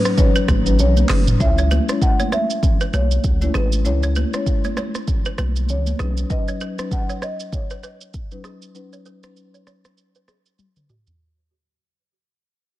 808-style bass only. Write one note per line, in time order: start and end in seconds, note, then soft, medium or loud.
0.49 0.81 G#1 medium
0.79 1.04 B1 loud
1.10 1.34 F#1 loud
1.40 1.79 C#2 loud
2.93 3.18 B1 medium
3.24 3.49 C#2 medium
3.55 3.87 G#1 medium
3.85 4.24 C#2 loud
5.39 5.71 B1 loud
5.69 5.94 C#2 medium
6.00 6.24 B1 loud